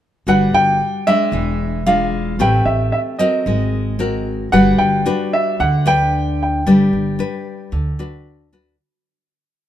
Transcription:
0.27 0.51 G1 medium
0.27 1.07 G3 soft
0.27 0.80 D4 medium
0.27 0.80 F#4 medium
0.27 0.80 B4 medium
0.27 0.55 F#5 loud
0.53 0.78 G1 medium
0.53 1.09 G5 loud
1.07 1.82 G#3 medium
1.07 1.83 D4 medium
1.07 1.89 E5 loud
1.32 2.35 E1 loud
1.32 2.37 E3 medium
1.86 2.35 G#3 medium
1.86 2.35 D4 medium
1.86 2.36 F4 medium
1.86 2.41 F5 medium
2.39 2.64 A1 medium
2.39 3.43 A3 medium
2.39 3.15 C4 medium
2.39 3.15 G4 medium
2.39 3.16 B4 medium
2.39 2.65 G5 medium
2.65 2.91 A1 medium
2.65 2.91 E5 medium
2.92 2.98 E5 medium
3.19 3.95 C4 medium
3.19 3.95 F#4 medium
3.19 3.96 A#4 medium
3.19 4.22 D#5 medium
3.46 4.49 G#1 loud
3.46 4.50 G#3 medium
3.99 4.48 C4 soft
3.99 4.48 F#4 medium
3.99 4.49 A#4 medium
4.52 4.78 G1 medium
4.52 5.56 G3 medium
4.52 5.02 D4 soft
4.52 5.02 F#4 medium
4.52 5.02 B4 medium
4.52 4.80 F#5 loud
4.78 5.04 G1 medium
4.78 5.34 G5 loud
5.06 5.59 D4 medium
5.06 5.59 F#4 soft
5.06 5.59 B4 medium
5.33 5.60 E5 medium
5.60 6.62 D2 loud
5.60 6.64 D3 soft
5.60 5.87 F#5 medium
5.86 6.61 D4 medium
5.86 6.62 B4 medium
5.86 6.41 G5 loud
6.43 8.23 G5 medium
6.66 6.91 G1 medium
6.66 7.70 G3 medium
6.66 7.15 D4 soft
6.66 7.15 B4 medium
6.93 7.17 G1 medium
7.19 7.72 D4 medium
7.19 7.72 B4 medium
7.72 8.75 D2 medium
7.72 8.76 D3 medium
7.99 8.48 D4 medium
7.99 8.48 F#4 medium
7.99 8.48 B4 medium
8.53 8.75 D4 medium
8.53 8.75 F#4 medium
8.53 8.75 B4 medium

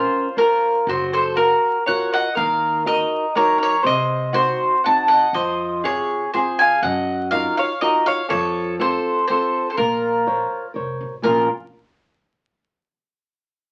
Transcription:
0.00 0.27 C#4 medium
0.00 0.34 F4 medium
0.00 0.27 A#4 soft
0.00 0.27 C5 soft
0.00 0.35 C5 medium
0.37 0.85 F4 medium
0.37 0.77 A#4 soft
0.37 0.89 A#4 medium
0.37 0.77 C5 soft
0.37 0.77 C#5 medium
0.87 1.51 F#1 medium
0.87 1.36 F#3 medium
0.87 1.11 F#4 medium
0.87 1.12 C5 medium
1.13 1.35 A4 medium
1.13 1.35 C5 medium
1.35 1.82 F#4 medium
1.35 1.77 F#4 soft
1.35 1.83 A#4 medium
1.35 1.77 A#4 medium
1.35 1.77 F5 medium
1.86 2.27 F4 soft
1.86 2.27 F#4 soft
1.86 2.27 A#4 medium
1.86 2.10 C#5 medium
1.86 2.11 F#5 medium
2.13 2.35 D#5 medium
2.13 2.35 F#5 medium
2.35 3.01 D#2 loud
2.35 2.84 D#3 medium
2.35 2.81 A#4 medium
2.35 2.82 F5 medium
2.85 3.25 D#4 soft
2.85 3.25 F#4 soft
2.85 3.32 A#4 medium
2.85 3.25 A#4 medium
2.85 3.32 D#5 medium
3.35 3.75 D#4 medium
3.35 3.74 F#4 soft
3.35 3.57 A#4 medium
3.35 3.75 A#4 medium
3.35 3.59 C#5 medium
3.58 3.81 A#4 medium
3.63 3.83 C#5 loud
3.83 4.49 C2 medium
3.83 4.32 C3 medium
3.83 4.29 C5 medium
3.83 4.31 D#5 medium
4.33 4.73 C4 soft
4.33 4.74 D#4 soft
4.33 4.80 F#4 medium
4.33 4.74 F#4 soft
4.33 4.80 C5 medium
4.84 5.25 C4 soft
4.84 5.25 D#4 soft
4.84 5.25 F#4 soft
4.84 5.08 F#5 medium
4.84 5.08 A5 medium
5.08 5.33 D#5 medium
5.08 5.34 F#5 medium
5.33 5.98 F2 medium
5.33 5.82 F3 medium
5.33 5.81 C5 medium
5.33 5.80 D#5 medium
5.84 6.23 C3 soft
5.84 6.23 F4 soft
5.84 6.30 G#4 medium
5.84 6.24 G#4 soft
5.84 6.30 C#5 medium
6.34 6.73 C4 soft
6.34 6.73 F4 soft
6.34 6.74 G#4 soft
6.34 6.58 G#4 medium
6.34 6.60 C5 medium
6.59 6.82 F5 medium
6.59 6.82 G#5 loud
6.82 7.46 F#2 loud
6.82 7.30 F#3 medium
6.82 7.29 D#5 medium
6.82 7.30 F#5 medium
7.31 7.71 D#4 soft
7.31 7.71 F4 soft
7.31 7.72 F#4 medium
7.31 7.55 A#4 medium
7.31 7.55 F5 medium
7.57 7.80 C#5 medium
7.57 7.81 F5 medium
7.81 8.20 D#4 soft
7.81 8.21 F4 soft
7.81 8.21 F#4 soft
7.81 8.04 A#4 medium
7.81 8.04 D#5 medium
8.06 8.28 C#5 medium
8.06 8.28 F5 medium
8.29 8.93 F2 loud
8.29 8.77 F3 medium
8.29 8.74 A4 medium
8.29 8.75 C#5 medium
8.79 9.18 C4 soft
8.79 9.18 F4 soft
8.79 9.24 A4 medium
8.79 9.18 A4 medium
8.79 9.25 C5 medium
9.28 9.68 C4 soft
9.28 9.68 F4 soft
9.28 9.68 A4 medium
9.28 9.66 C5 medium
9.70 9.76 A4 soft
9.70 9.76 C5 soft
9.77 10.41 A#1 medium
9.77 10.25 A#3 medium
9.77 10.71 F4 medium
9.77 10.71 A#4 medium
10.27 10.65 A#4 soft
10.27 10.65 C5 soft
10.27 10.65 C#5 medium
10.74 10.98 F1 medium
10.74 11.14 A#4 soft
10.74 11.14 C5 soft
10.74 11.14 C#5 soft
11.01 11.22 A1 medium
11.22 11.48 A#1 medium
11.22 11.46 A#2 soft
11.22 11.47 F3 soft
11.22 11.47 A#3 soft
11.22 11.48 C#4 soft
11.22 11.48 F4 medium
11.22 11.47 A#4 medium

